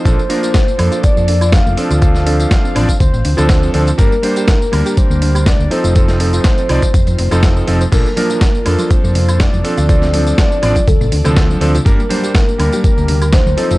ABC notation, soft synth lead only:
X:1
M:4/4
L:1/8
Q:"Swing 16ths" 1/4=122
K:Bb
V:1 name="Soft synth lead"
c4 d2 f2 | f4 c3 z | B4 c2 d c- | c6- c z |
B4 c2 d2 | d4 A3 z | B4 B2 c2 |]